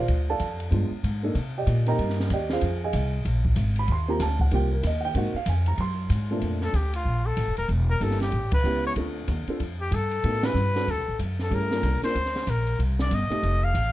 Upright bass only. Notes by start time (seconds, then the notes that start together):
0.08 D2
0.40 F2
0.71 G2
0.91 muted upright bass stroke
1.03 G#2
1.35 C3
1.67 A#2
1.98 G2
2.30 D#2
2.62 F2
2.93 C2
3.25 A#1
3.56 G#1
3.88 D#2
4.20 D2
4.51 C2
4.83 D#2
5.15 G#2
5.34 muted upright bass stroke
5.46 F2
5.77 F#2
6.10 G#2
6.42 F2
6.73 D2
7.05 A#1
7.37 A1
7.47 F1
7.58 D1
7.68 E1
8.00 G1
8.32 A1
8.64 C#2
8.96 D2
9.28 D#2
9.47 muted upright bass stroke
9.60 F2
9.91 G2
10.24 A2
10.54 G2
10.87 D2
10.97 C2
11.08 A1
11.19 F#2
11.51 G2
11.83 C2
12.15 D2
12.47 A#1
12.79 C2
13.11 G1
13.30 muted upright bass stroke
13.43 F1
13.74 A1